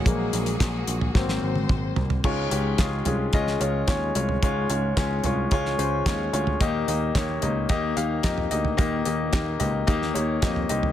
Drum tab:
CC |----------------|x---------------|----------------|----------------|
HH |x-xxx-x---------|--x-x-x-x-x-x-x-|x-x-x-x-x-x-x-x-|x-x-x-x-x-x-x-x-|
CP |----x-----------|----x-------x---|----x-------x---|----x-------x---|
SD |----o---oo------|----o----o--o---|----o----o--o---|----o-------o---|
T1 |-----------o----|----------------|----------------|----------------|
T2 |------------o---|----------------|----------------|----------------|
FT |-------o------oo|------o--------o|------o--------o|------o------o-o|
BD |o---o---o---o---|o---o---o---o---|o---o---o---o---|o---o---o---o---|

CC |----------------|
HH |x-x-x-x-x-x-x-x-|
CP |----x-------x---|
SD |----o----o--o---|
T1 |----------------|
T2 |----------------|
FT |------o------o-o|
BD |o---o---o---o---|